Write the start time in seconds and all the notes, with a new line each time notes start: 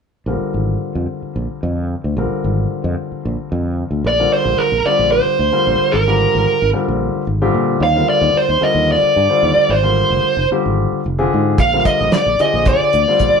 0.26 A#1 D3 G3 C4 F4 A#4
0.41 muted fretless electric bass stroke
0.54 G#1
0.95 F2
1.22 muted fretless electric bass stroke
1.36 A#1
1.63 F2
2.04 D2
2.17 A#1 D3 G3 C4 F4 A#4
2.32 muted fretless electric bass stroke
2.44 G#1
2.84 F2
3.12 muted fretless electric bass stroke
3.25 A#1
3.52 F2
3.91 D2
4.04 A#1 D5
4.19 D3 G3 C4 F4 A#4
4.33 C5
4.45 A#1
4.58 A#4, muted fretless electric bass stroke
4.72 A#1
4.85 D3 G3 C4 F4 G4 D5, muted fretless electric bass stroke
4.99 A#1
5.12 C5
5.26 muted fretless electric bass stroke
5.39 D2
5.52 D3 G3 C4 F4 A#4
5.67 A#1
5.92 G#1 A#4
6.07 D3 G3 C4 F4 G4
6.35 G#1
6.62 G#1
6.73 D3 G3 C4 F4 A#4
6.88 A#1
7.15 muted fretless electric bass stroke
7.27 G#1
7.42 D3 G3 C4 F4 G4
7.54 A#2
7.80 D#2 F5
7.96 D3 G3 C4 F4 A#4
8.10 D5
8.21 D#2
8.34 C5, muted fretless electric bass stroke
8.49 D#2
8.61 D3 G3 C4 F4 A#4 D#5, muted fretless electric bass stroke
8.75 D#2
8.92 D5
9.03 muted fretless electric bass stroke
9.16 G2
9.30 D3 G3 C4 F4 C5
9.43 D#2
9.57 muted fretless electric bass stroke
9.69 G#1 C5
9.83 D3 G3 C4 F4 A#4
10.10 F1
10.24 muted fretless electric bass stroke
10.37 F1
10.51 D3 G3 C4 F4 G4, muted fretless electric bass stroke
10.66 G#1
10.92 muted fretless electric bass stroke
11.06 F1
11.19 D3 C4 F4 G4 G#4
11.34 G#2
11.58 A#1 F5, kick, closed hi-hat
11.73 D3 G3 C4 F4 A#4
11.85 D#5, kick, closed hi-hat
12.01 A#1
12.12 D5, snare, closed hi-hat
12.26 A#1
12.39 D3 C4 F4 G4 G#4 D#5, muted fretless electric bass stroke, closed hi-hat
12.54 A#1
12.66 D5, kick, closed hi-hat
12.81 muted fretless electric bass stroke
12.93 D2, closed hi-hat
13.08 D3 G3 C4 F4 C5
13.19 A#1, kick, closed hi-hat
13.35 muted fretless electric bass stroke